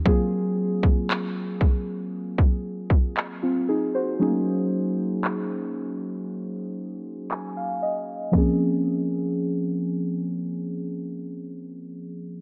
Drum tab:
CC |----------------|----------------|x---------------|
CP |----x-------x---|----x-------x---|----------------|
BD |o--o--o--o-o----|----------------|o---------------|